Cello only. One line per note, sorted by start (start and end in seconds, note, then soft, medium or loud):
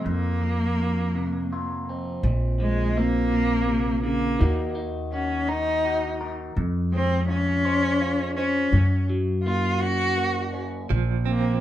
0.06 1.87 A#3 loud
2.61 2.99 G#3 medium
2.97 4.03 A#3 loud
4.04 4.72 A#3 loud
5.13 5.51 C#4 medium
5.49 6.30 D#4 loud
6.94 7.27 C4 medium
7.28 8.33 C#4 loud
8.36 9.05 C#4 medium
9.44 9.82 F4 medium
9.81 10.62 F#4 loud
11.28 11.61 A#3 medium